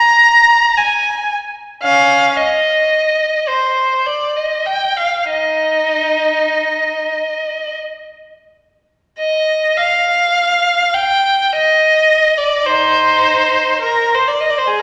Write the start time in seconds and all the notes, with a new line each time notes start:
Already playing: A#5
0.77 G#5
1.83 C#4 F5
2.36 D#5
3.48 C5
4.06 D5
4.36 D#5
4.66 G5
4.97 F5
5.30 D#4 D#5
9.19 D#5
9.77 F5
10.94 G5
11.53 D#5
12.38 D5
12.66 D#4 C5
13.81 A#4
14.15 C5
14.28 D5
14.40 D#5
14.50 D5
14.58 C5
14.67 G#4